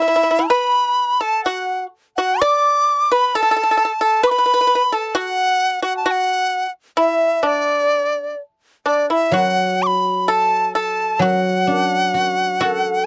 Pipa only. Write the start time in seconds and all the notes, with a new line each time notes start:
0.02 E4
0.08 E4
0.16 E4
0.23 E4
0.31 E4
0.39 E4
0.50 B4
1.21 A4
1.46 F#4
2.18 F#4
2.42 D5
3.12 B4
3.35 A4
3.43 A4
3.51 A4
3.56 A4
3.63 A4
3.71 A4
3.77 A4
3.85 A4
4.01 A4
4.23 B4
4.31 B4
4.38 B4
4.46 B4
4.54 B4
4.61 B4
4.67 B4
4.75 B4
4.92 A4
5.15 F#4
5.82 F#4
6.06 F#4
6.97 E4
7.43 D4
8.86 D4
9.10 E4
9.34 F#4
10.28 A4
10.75 A4
11.22 F#4
12.61 F#4